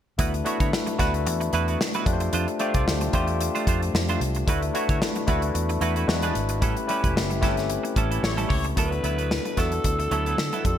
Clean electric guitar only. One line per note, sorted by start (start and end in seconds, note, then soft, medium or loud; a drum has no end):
0.19 0.34 B3 medium
0.19 0.33 E4 medium
0.19 0.33 F#4 medium
0.19 0.33 B4 medium
0.34 muted clean electric guitar stroke soft
0.45 0.58 B3 medium
0.45 0.58 E4 medium
0.45 0.58 F#4 medium
0.45 0.59 C#5 medium
0.60 0.71 B3 soft
0.60 0.71 E4 medium
0.60 0.71 F#4 medium
0.60 0.71 C#5 medium
0.72 muted clean electric guitar stroke soft
0.87 muted clean electric guitar stroke soft
0.99 1.15 B3 medium
0.99 1.14 E4 medium
0.99 1.13 F#4 medium
0.99 1.13 B4 medium
1.14 muted clean electric guitar stroke soft
1.26 muted clean electric guitar stroke soft
1.41 muted clean electric guitar stroke soft
1.53 1.68 B3 medium
1.53 1.68 E4 medium
1.53 1.68 F#4 medium
1.53 1.67 B4 medium
1.68 1.79 B3 soft
1.68 1.79 E4 medium
1.68 1.79 F#4 medium
1.68 1.78 B4 medium
1.95 2.06 B3 medium
1.95 2.06 E4 medium
1.95 2.06 F#4 medium
1.95 2.07 B4 medium
2.21 muted clean electric guitar stroke soft
2.33 2.49 A3 medium
2.33 2.48 D4 medium
2.33 2.47 F4 medium
2.33 2.47 C5 medium
2.48 muted clean electric guitar stroke soft
2.60 2.72 A3 medium
2.60 2.72 D4 medium
2.60 2.73 F4 medium
2.60 2.73 D5 medium
2.74 2.85 A3 soft
2.74 2.85 D4 medium
2.74 2.85 F4 medium
2.74 2.85 D5 medium
2.87 muted clean electric guitar stroke soft
3.01 muted clean electric guitar stroke soft
3.13 3.29 A3 medium
3.13 3.28 D4 medium
3.13 3.27 F4 medium
3.13 3.27 C5 medium
3.28 muted clean electric guitar stroke soft
3.41 muted clean electric guitar stroke soft
3.55 3.66 A3 soft
3.55 3.66 D4 medium
3.55 3.66 F4 medium
3.55 3.65 C5 medium
3.67 3.83 A3 medium
3.67 3.82 D4 medium
3.67 3.81 F4 medium
3.67 3.81 C5 medium
3.82 muted clean electric guitar stroke soft
3.94 muted clean electric guitar stroke soft
4.09 4.21 A3 medium
4.09 4.21 D4 medium
4.09 4.21 F4 medium
4.09 4.22 C5 medium
4.22 muted clean electric guitar stroke soft
4.36 muted clean electric guitar stroke soft
4.48 4.64 A3 medium
4.48 4.62 E4 medium
4.48 4.62 F#4 medium
4.48 4.61 B4 medium
4.63 muted clean electric guitar stroke soft
4.75 4.87 A3 medium
4.75 4.87 E4 medium
4.75 4.87 F#4 medium
4.75 4.88 C#5 medium
4.89 5.00 A3 medium
4.89 5.00 E4 medium
4.89 5.00 F#4 medium
4.89 5.00 C#5 medium
5.02 muted clean electric guitar stroke soft
5.16 muted clean electric guitar stroke soft
5.28 5.44 A3 medium
5.28 5.43 E4 medium
5.28 5.42 F#4 medium
5.28 5.42 B4 medium
5.43 muted clean electric guitar stroke soft
5.55 muted clean electric guitar stroke soft
5.69 muted clean electric guitar stroke soft
5.81 5.96 A3 medium
5.81 5.95 E4 medium
5.81 5.95 F#4 medium
5.81 5.94 B4 medium
5.96 6.07 A3 soft
5.96 6.07 E4 medium
5.96 6.07 F#4 medium
5.96 6.06 B4 medium
6.23 6.34 B3 medium
6.23 6.35 D4 medium
6.23 6.35 G#4 medium
6.23 6.35 B4 medium
6.35 muted clean electric guitar stroke soft
6.50 muted clean electric guitar stroke soft
6.62 6.78 G3 medium
6.62 6.77 C#4 medium
6.62 6.76 E4 medium
6.62 6.76 A4 medium
6.77 muted clean electric guitar stroke soft
6.89 7.01 G3 medium
6.89 7.02 C#4 medium
6.89 7.02 E4 medium
6.89 7.02 B4 medium
7.03 7.14 G3 soft
7.03 7.14 C#4 medium
7.03 7.14 E4 medium
7.03 7.14 B4 medium
7.16 muted clean electric guitar stroke soft
7.30 muted clean electric guitar stroke soft
7.42 7.58 G3 medium
7.42 7.57 C#4 medium
7.42 7.56 E4 medium
7.42 7.55 A4 medium
7.57 muted clean electric guitar stroke soft
7.69 muted clean electric guitar stroke soft
7.83 muted clean electric guitar stroke soft
7.96 8.11 G3 medium
7.96 8.11 C#4 medium
7.96 8.10 E4 medium
7.96 8.09 A4 medium
8.11 8.22 G3 soft
8.11 8.22 C#4 medium
8.11 8.22 E4 medium
8.11 8.21 A4 medium
8.37 8.49 G3 medium
8.37 8.50 C#4 medium
8.37 8.50 E4 medium
8.37 8.50 A4 medium
8.51 muted clean electric guitar stroke soft
8.65 muted clean electric guitar stroke soft
8.77 8.93 F#3 medium
8.77 8.92 B3 medium
8.77 8.91 E4 medium
8.77 8.91 A4 medium
8.92 muted clean electric guitar stroke soft
9.04 9.16 F#3 medium
9.04 9.16 B3 medium
9.04 9.17 E4 medium
9.04 9.17 B4 medium
9.18 9.29 F#3 soft
9.18 9.29 B3 soft
9.18 9.29 E4 soft
9.18 9.29 B4 soft
9.31 muted clean electric guitar stroke soft
9.45 muted clean electric guitar stroke soft
9.57 9.73 F#3 medium
9.57 9.72 B3 medium
9.57 9.72 E4 medium
9.57 9.71 A4 medium
9.72 muted clean electric guitar stroke soft
9.84 muted clean electric guitar stroke soft
9.99 muted clean electric guitar stroke soft
10.11 10.26 F#3 medium
10.11 10.26 B3 medium
10.11 10.26 E4 medium
10.11 10.25 A4 medium
10.26 10.37 F#3 soft
10.26 10.37 B3 medium
10.26 10.37 E4 medium
10.26 10.36 A4 medium
10.38 muted clean electric guitar stroke soft
10.53 10.65 F#3 medium
10.53 10.65 B3 medium
10.53 10.65 E4 medium
10.53 10.65 A4 medium
10.65 muted clean electric guitar stroke soft